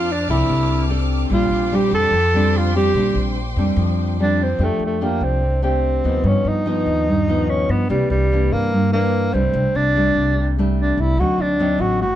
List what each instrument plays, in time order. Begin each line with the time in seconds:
Already playing: upright bass F2, nylon-string guitar F3, tenor saxophone F4, violin section C5 A5 D6 F6
0.12 tenor saxophone D4
0.28 upright bass C2, nylon-string guitar C4 D4 A4, tenor saxophone E4
0.48 upright bass C2, nylon-string guitar C3
0.90 nylon-string guitar C4 D4 A4
1.30 upright bass A#1, nylon-string guitar A#2 G3 C4 D4, tenor saxophone F4, violin section C5 G5 C6
1.50 upright bass A#1
1.72 nylon-string guitar G3 C4 D4, tenor saxophone G4
1.91 upright bass F2, tenor saxophone A4
2.11 upright bass F2, nylon-string guitar F3
2.34 nylon-string guitar G3 C4 D4
2.57 tenor saxophone F4
2.76 nylon-string guitar G3 C4 D4, tenor saxophone G4
2.94 upright bass A#1, nylon-string guitar A#2 G3 C4 D4
3.15 upright bass A#1
3.56 upright bass F2, nylon-string guitar G3 C4 D4
3.76 upright bass F2, nylon-string guitar F3
4.19 nylon-string guitar G3 C4 D4, tenor saxophone D4
4.43 tenor saxophone C4
4.59 upright bass F2, nylon-string guitar F3 A3 D4 G4
4.65 tenor saxophone A3
4.79 upright bass F2
4.86 tenor saxophone A3
5.01 nylon-string guitar A3 D4 G4, tenor saxophone A#3
5.20 upright bass C2, tenor saxophone C4
5.43 nylon-string guitar C3
5.62 nylon-string guitar A3 D4 G4, tenor saxophone C4
6.04 upright bass D2, nylon-string guitar F3 B3 D#4
6.23 nylon-string guitar G2, upright bass G2, tenor saxophone C#4
6.45 upright bass G2, tenor saxophone D#4
6.66 nylon-string guitar F3 B3 D#4
6.86 upright bass D#2
7.08 nylon-string guitar G2
7.28 nylon-string guitar F3 B3 D#4
7.50 tenor saxophone C#4
7.69 upright bass G2, tenor saxophone B3
7.89 upright bass C2, nylon-string guitar C3 E3 A#3 D4, tenor saxophone G3
8.10 upright bass C2, tenor saxophone G3
8.32 nylon-string guitar E3 A#3 D4
8.52 upright bass G2, tenor saxophone A#3
8.73 nylon-string guitar G2
8.93 nylon-string guitar E3 A#3 D4, tenor saxophone A#3
9.33 upright bass C2, nylon-string guitar G3 A3 D4, tenor saxophone C4
9.53 upright bass C2, nylon-string guitar C3
9.75 upright bass C2, tenor saxophone D4
9.96 nylon-string guitar G3 A3 D4
10.15 upright bass C2
10.38 nylon-string guitar C3
10.58 nylon-string guitar G3 A3 D4
10.79 tenor saxophone D4
10.97 upright bass C2, tenor saxophone E4
11.17 upright bass D2, nylon-string guitar D3 F#3 C4 D#4, tenor saxophone F#4
11.38 upright bass D2, tenor saxophone D4
11.60 nylon-string guitar F#3 C4 D#4
11.79 upright bass A1, tenor saxophone F#4
12.01 nylon-string guitar A2, tenor saxophone F#4